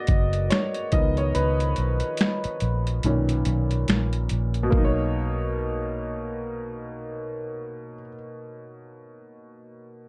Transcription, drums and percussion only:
0, 0, Header, 1, 2, 480
1, 0, Start_track
1, 0, Key_signature, 5, "major"
1, 0, Tempo, 845070
1, 766, Time_signature, 4, 2, 24, 8
1, 5729, End_track
2, 0, Start_track
2, 0, Title_t, "Drums"
2, 41, Note_on_c, 9, 42, 57
2, 48, Note_on_c, 9, 36, 84
2, 98, Note_off_c, 9, 42, 0
2, 105, Note_off_c, 9, 36, 0
2, 188, Note_on_c, 9, 42, 48
2, 244, Note_off_c, 9, 42, 0
2, 287, Note_on_c, 9, 42, 77
2, 296, Note_on_c, 9, 38, 104
2, 299, Note_on_c, 9, 26, 88
2, 344, Note_off_c, 9, 42, 0
2, 353, Note_off_c, 9, 38, 0
2, 356, Note_off_c, 9, 26, 0
2, 423, Note_on_c, 9, 42, 41
2, 480, Note_off_c, 9, 42, 0
2, 521, Note_on_c, 9, 42, 62
2, 526, Note_on_c, 9, 36, 89
2, 578, Note_off_c, 9, 42, 0
2, 583, Note_off_c, 9, 36, 0
2, 665, Note_on_c, 9, 42, 36
2, 722, Note_off_c, 9, 42, 0
2, 766, Note_on_c, 9, 42, 73
2, 823, Note_off_c, 9, 42, 0
2, 910, Note_on_c, 9, 42, 44
2, 967, Note_off_c, 9, 42, 0
2, 1000, Note_on_c, 9, 42, 60
2, 1057, Note_off_c, 9, 42, 0
2, 1135, Note_on_c, 9, 42, 45
2, 1192, Note_off_c, 9, 42, 0
2, 1235, Note_on_c, 9, 42, 76
2, 1254, Note_on_c, 9, 38, 93
2, 1257, Note_on_c, 9, 26, 77
2, 1291, Note_off_c, 9, 42, 0
2, 1311, Note_off_c, 9, 38, 0
2, 1314, Note_off_c, 9, 26, 0
2, 1385, Note_on_c, 9, 42, 44
2, 1442, Note_off_c, 9, 42, 0
2, 1479, Note_on_c, 9, 42, 54
2, 1536, Note_off_c, 9, 42, 0
2, 1629, Note_on_c, 9, 42, 40
2, 1686, Note_off_c, 9, 42, 0
2, 1722, Note_on_c, 9, 42, 69
2, 1779, Note_off_c, 9, 42, 0
2, 1868, Note_on_c, 9, 42, 45
2, 1925, Note_off_c, 9, 42, 0
2, 1961, Note_on_c, 9, 42, 62
2, 2018, Note_off_c, 9, 42, 0
2, 2106, Note_on_c, 9, 42, 46
2, 2163, Note_off_c, 9, 42, 0
2, 2204, Note_on_c, 9, 42, 70
2, 2213, Note_on_c, 9, 38, 102
2, 2216, Note_on_c, 9, 26, 79
2, 2260, Note_off_c, 9, 42, 0
2, 2270, Note_off_c, 9, 38, 0
2, 2273, Note_off_c, 9, 26, 0
2, 2344, Note_on_c, 9, 42, 41
2, 2401, Note_off_c, 9, 42, 0
2, 2439, Note_on_c, 9, 42, 62
2, 2496, Note_off_c, 9, 42, 0
2, 2580, Note_on_c, 9, 42, 35
2, 2637, Note_off_c, 9, 42, 0
2, 2683, Note_on_c, 9, 36, 98
2, 2740, Note_off_c, 9, 36, 0
2, 5729, End_track
0, 0, End_of_file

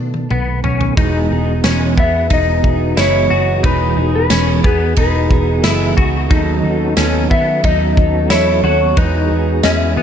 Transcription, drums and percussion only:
0, 0, Header, 1, 2, 480
1, 0, Start_track
1, 0, Key_signature, 4, "major"
1, 0, Tempo, 666667
1, 701, Time_signature, 4, 2, 24, 8
1, 7219, End_track
2, 0, Start_track
2, 0, Title_t, "Drums"
2, 100, Note_on_c, 9, 48, 56
2, 172, Note_off_c, 9, 48, 0
2, 220, Note_on_c, 9, 47, 74
2, 292, Note_off_c, 9, 47, 0
2, 460, Note_on_c, 9, 43, 78
2, 532, Note_off_c, 9, 43, 0
2, 581, Note_on_c, 9, 43, 82
2, 653, Note_off_c, 9, 43, 0
2, 701, Note_on_c, 9, 36, 107
2, 701, Note_on_c, 9, 51, 47
2, 773, Note_off_c, 9, 36, 0
2, 773, Note_off_c, 9, 51, 0
2, 1179, Note_on_c, 9, 54, 66
2, 1180, Note_on_c, 9, 38, 125
2, 1180, Note_on_c, 9, 51, 67
2, 1251, Note_off_c, 9, 54, 0
2, 1252, Note_off_c, 9, 38, 0
2, 1252, Note_off_c, 9, 51, 0
2, 1422, Note_on_c, 9, 36, 98
2, 1494, Note_off_c, 9, 36, 0
2, 1657, Note_on_c, 9, 51, 53
2, 1661, Note_on_c, 9, 36, 84
2, 1729, Note_off_c, 9, 51, 0
2, 1733, Note_off_c, 9, 36, 0
2, 1901, Note_on_c, 9, 36, 83
2, 1973, Note_off_c, 9, 36, 0
2, 2140, Note_on_c, 9, 51, 67
2, 2141, Note_on_c, 9, 38, 125
2, 2141, Note_on_c, 9, 54, 73
2, 2212, Note_off_c, 9, 51, 0
2, 2213, Note_off_c, 9, 38, 0
2, 2213, Note_off_c, 9, 54, 0
2, 2619, Note_on_c, 9, 51, 47
2, 2620, Note_on_c, 9, 36, 118
2, 2691, Note_off_c, 9, 51, 0
2, 2692, Note_off_c, 9, 36, 0
2, 3096, Note_on_c, 9, 54, 72
2, 3097, Note_on_c, 9, 38, 112
2, 3097, Note_on_c, 9, 51, 72
2, 3168, Note_off_c, 9, 54, 0
2, 3169, Note_off_c, 9, 38, 0
2, 3169, Note_off_c, 9, 51, 0
2, 3343, Note_on_c, 9, 36, 99
2, 3415, Note_off_c, 9, 36, 0
2, 3575, Note_on_c, 9, 51, 60
2, 3581, Note_on_c, 9, 36, 86
2, 3647, Note_off_c, 9, 51, 0
2, 3653, Note_off_c, 9, 36, 0
2, 3820, Note_on_c, 9, 36, 89
2, 3892, Note_off_c, 9, 36, 0
2, 4058, Note_on_c, 9, 51, 76
2, 4059, Note_on_c, 9, 38, 111
2, 4059, Note_on_c, 9, 54, 73
2, 4130, Note_off_c, 9, 51, 0
2, 4131, Note_off_c, 9, 38, 0
2, 4131, Note_off_c, 9, 54, 0
2, 4303, Note_on_c, 9, 36, 86
2, 4375, Note_off_c, 9, 36, 0
2, 4540, Note_on_c, 9, 51, 48
2, 4541, Note_on_c, 9, 36, 117
2, 4612, Note_off_c, 9, 51, 0
2, 4613, Note_off_c, 9, 36, 0
2, 5016, Note_on_c, 9, 54, 63
2, 5017, Note_on_c, 9, 38, 127
2, 5017, Note_on_c, 9, 51, 70
2, 5088, Note_off_c, 9, 54, 0
2, 5089, Note_off_c, 9, 38, 0
2, 5089, Note_off_c, 9, 51, 0
2, 5263, Note_on_c, 9, 36, 98
2, 5335, Note_off_c, 9, 36, 0
2, 5498, Note_on_c, 9, 51, 54
2, 5502, Note_on_c, 9, 36, 86
2, 5570, Note_off_c, 9, 51, 0
2, 5574, Note_off_c, 9, 36, 0
2, 5741, Note_on_c, 9, 36, 91
2, 5813, Note_off_c, 9, 36, 0
2, 5976, Note_on_c, 9, 51, 72
2, 5977, Note_on_c, 9, 38, 122
2, 5977, Note_on_c, 9, 54, 69
2, 6048, Note_off_c, 9, 51, 0
2, 6049, Note_off_c, 9, 38, 0
2, 6049, Note_off_c, 9, 54, 0
2, 6457, Note_on_c, 9, 51, 44
2, 6460, Note_on_c, 9, 36, 112
2, 6529, Note_off_c, 9, 51, 0
2, 6532, Note_off_c, 9, 36, 0
2, 6936, Note_on_c, 9, 54, 70
2, 6937, Note_on_c, 9, 38, 118
2, 6937, Note_on_c, 9, 51, 68
2, 7008, Note_off_c, 9, 54, 0
2, 7009, Note_off_c, 9, 38, 0
2, 7009, Note_off_c, 9, 51, 0
2, 7219, End_track
0, 0, End_of_file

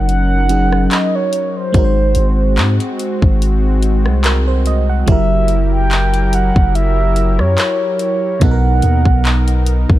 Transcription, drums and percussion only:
0, 0, Header, 1, 2, 480
1, 0, Start_track
1, 0, Tempo, 833333
1, 1006, Time_signature, 4, 2, 24, 8
1, 5755, End_track
2, 0, Start_track
2, 0, Title_t, "Drums"
2, 51, Note_on_c, 9, 42, 66
2, 108, Note_off_c, 9, 42, 0
2, 285, Note_on_c, 9, 42, 74
2, 342, Note_off_c, 9, 42, 0
2, 418, Note_on_c, 9, 37, 89
2, 475, Note_off_c, 9, 37, 0
2, 526, Note_on_c, 9, 42, 65
2, 527, Note_on_c, 9, 39, 112
2, 583, Note_off_c, 9, 42, 0
2, 585, Note_off_c, 9, 39, 0
2, 764, Note_on_c, 9, 42, 69
2, 822, Note_off_c, 9, 42, 0
2, 1003, Note_on_c, 9, 42, 69
2, 1005, Note_on_c, 9, 36, 95
2, 1061, Note_off_c, 9, 42, 0
2, 1062, Note_off_c, 9, 36, 0
2, 1237, Note_on_c, 9, 42, 70
2, 1295, Note_off_c, 9, 42, 0
2, 1483, Note_on_c, 9, 42, 37
2, 1484, Note_on_c, 9, 39, 99
2, 1541, Note_off_c, 9, 39, 0
2, 1541, Note_off_c, 9, 42, 0
2, 1614, Note_on_c, 9, 42, 65
2, 1672, Note_off_c, 9, 42, 0
2, 1725, Note_on_c, 9, 42, 73
2, 1783, Note_off_c, 9, 42, 0
2, 1857, Note_on_c, 9, 36, 84
2, 1914, Note_off_c, 9, 36, 0
2, 1970, Note_on_c, 9, 42, 65
2, 2027, Note_off_c, 9, 42, 0
2, 2203, Note_on_c, 9, 42, 73
2, 2261, Note_off_c, 9, 42, 0
2, 2337, Note_on_c, 9, 37, 91
2, 2394, Note_off_c, 9, 37, 0
2, 2443, Note_on_c, 9, 42, 64
2, 2444, Note_on_c, 9, 39, 114
2, 2500, Note_off_c, 9, 42, 0
2, 2502, Note_off_c, 9, 39, 0
2, 2682, Note_on_c, 9, 42, 68
2, 2740, Note_off_c, 9, 42, 0
2, 2924, Note_on_c, 9, 42, 72
2, 2925, Note_on_c, 9, 36, 100
2, 2981, Note_off_c, 9, 42, 0
2, 2983, Note_off_c, 9, 36, 0
2, 3157, Note_on_c, 9, 42, 73
2, 3215, Note_off_c, 9, 42, 0
2, 3406, Note_on_c, 9, 39, 101
2, 3406, Note_on_c, 9, 42, 37
2, 3463, Note_off_c, 9, 42, 0
2, 3464, Note_off_c, 9, 39, 0
2, 3534, Note_on_c, 9, 42, 65
2, 3592, Note_off_c, 9, 42, 0
2, 3646, Note_on_c, 9, 42, 73
2, 3703, Note_off_c, 9, 42, 0
2, 3778, Note_on_c, 9, 36, 83
2, 3836, Note_off_c, 9, 36, 0
2, 3890, Note_on_c, 9, 42, 64
2, 3948, Note_off_c, 9, 42, 0
2, 4125, Note_on_c, 9, 42, 76
2, 4182, Note_off_c, 9, 42, 0
2, 4257, Note_on_c, 9, 37, 90
2, 4315, Note_off_c, 9, 37, 0
2, 4365, Note_on_c, 9, 42, 65
2, 4367, Note_on_c, 9, 39, 113
2, 4423, Note_off_c, 9, 42, 0
2, 4424, Note_off_c, 9, 39, 0
2, 4604, Note_on_c, 9, 42, 65
2, 4662, Note_off_c, 9, 42, 0
2, 4845, Note_on_c, 9, 42, 72
2, 4848, Note_on_c, 9, 36, 105
2, 4903, Note_off_c, 9, 42, 0
2, 4905, Note_off_c, 9, 36, 0
2, 5082, Note_on_c, 9, 42, 72
2, 5140, Note_off_c, 9, 42, 0
2, 5215, Note_on_c, 9, 36, 85
2, 5273, Note_off_c, 9, 36, 0
2, 5329, Note_on_c, 9, 42, 38
2, 5330, Note_on_c, 9, 39, 97
2, 5387, Note_off_c, 9, 39, 0
2, 5387, Note_off_c, 9, 42, 0
2, 5458, Note_on_c, 9, 42, 66
2, 5516, Note_off_c, 9, 42, 0
2, 5567, Note_on_c, 9, 42, 74
2, 5625, Note_off_c, 9, 42, 0
2, 5700, Note_on_c, 9, 36, 88
2, 5755, Note_off_c, 9, 36, 0
2, 5755, End_track
0, 0, End_of_file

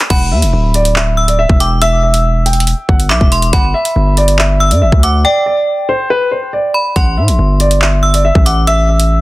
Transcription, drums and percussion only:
0, 0, Header, 1, 2, 480
1, 0, Start_track
1, 0, Key_signature, 1, "minor"
1, 0, Tempo, 428571
1, 115, Time_signature, 4, 2, 24, 8
1, 10315, End_track
2, 0, Start_track
2, 0, Title_t, "Drums"
2, 114, Note_on_c, 9, 42, 81
2, 115, Note_on_c, 9, 36, 114
2, 115, Note_on_c, 9, 49, 105
2, 226, Note_off_c, 9, 42, 0
2, 227, Note_off_c, 9, 36, 0
2, 227, Note_off_c, 9, 49, 0
2, 475, Note_on_c, 9, 42, 81
2, 587, Note_off_c, 9, 42, 0
2, 832, Note_on_c, 9, 42, 70
2, 944, Note_off_c, 9, 42, 0
2, 954, Note_on_c, 9, 42, 84
2, 1066, Note_off_c, 9, 42, 0
2, 1075, Note_on_c, 9, 39, 116
2, 1187, Note_off_c, 9, 39, 0
2, 1436, Note_on_c, 9, 42, 81
2, 1548, Note_off_c, 9, 42, 0
2, 1674, Note_on_c, 9, 36, 104
2, 1786, Note_off_c, 9, 36, 0
2, 1796, Note_on_c, 9, 42, 95
2, 1908, Note_off_c, 9, 42, 0
2, 2034, Note_on_c, 9, 42, 86
2, 2146, Note_off_c, 9, 42, 0
2, 2394, Note_on_c, 9, 42, 80
2, 2506, Note_off_c, 9, 42, 0
2, 2755, Note_on_c, 9, 42, 59
2, 2835, Note_off_c, 9, 42, 0
2, 2835, Note_on_c, 9, 42, 60
2, 2915, Note_off_c, 9, 42, 0
2, 2915, Note_on_c, 9, 42, 61
2, 2991, Note_off_c, 9, 42, 0
2, 2991, Note_on_c, 9, 42, 78
2, 3103, Note_off_c, 9, 42, 0
2, 3235, Note_on_c, 9, 36, 105
2, 3347, Note_off_c, 9, 36, 0
2, 3356, Note_on_c, 9, 42, 77
2, 3468, Note_off_c, 9, 42, 0
2, 3475, Note_on_c, 9, 39, 117
2, 3587, Note_off_c, 9, 39, 0
2, 3594, Note_on_c, 9, 36, 102
2, 3706, Note_off_c, 9, 36, 0
2, 3716, Note_on_c, 9, 42, 97
2, 3828, Note_off_c, 9, 42, 0
2, 3835, Note_on_c, 9, 42, 71
2, 3947, Note_off_c, 9, 42, 0
2, 3954, Note_on_c, 9, 42, 83
2, 3955, Note_on_c, 9, 36, 113
2, 4066, Note_off_c, 9, 42, 0
2, 4067, Note_off_c, 9, 36, 0
2, 4314, Note_on_c, 9, 42, 83
2, 4426, Note_off_c, 9, 42, 0
2, 4671, Note_on_c, 9, 42, 68
2, 4783, Note_off_c, 9, 42, 0
2, 4793, Note_on_c, 9, 42, 86
2, 4905, Note_off_c, 9, 42, 0
2, 4914, Note_on_c, 9, 39, 116
2, 5026, Note_off_c, 9, 39, 0
2, 5275, Note_on_c, 9, 42, 79
2, 5387, Note_off_c, 9, 42, 0
2, 5514, Note_on_c, 9, 36, 105
2, 5626, Note_off_c, 9, 36, 0
2, 5636, Note_on_c, 9, 42, 96
2, 5748, Note_off_c, 9, 42, 0
2, 7794, Note_on_c, 9, 42, 83
2, 7795, Note_on_c, 9, 36, 114
2, 7906, Note_off_c, 9, 42, 0
2, 7907, Note_off_c, 9, 36, 0
2, 8155, Note_on_c, 9, 42, 82
2, 8267, Note_off_c, 9, 42, 0
2, 8512, Note_on_c, 9, 42, 70
2, 8624, Note_off_c, 9, 42, 0
2, 8634, Note_on_c, 9, 42, 84
2, 8746, Note_off_c, 9, 42, 0
2, 8755, Note_on_c, 9, 39, 113
2, 8867, Note_off_c, 9, 39, 0
2, 9116, Note_on_c, 9, 42, 78
2, 9228, Note_off_c, 9, 42, 0
2, 9355, Note_on_c, 9, 36, 104
2, 9467, Note_off_c, 9, 36, 0
2, 9477, Note_on_c, 9, 42, 96
2, 9589, Note_off_c, 9, 42, 0
2, 9715, Note_on_c, 9, 42, 85
2, 9827, Note_off_c, 9, 42, 0
2, 10075, Note_on_c, 9, 42, 82
2, 10187, Note_off_c, 9, 42, 0
2, 10315, End_track
0, 0, End_of_file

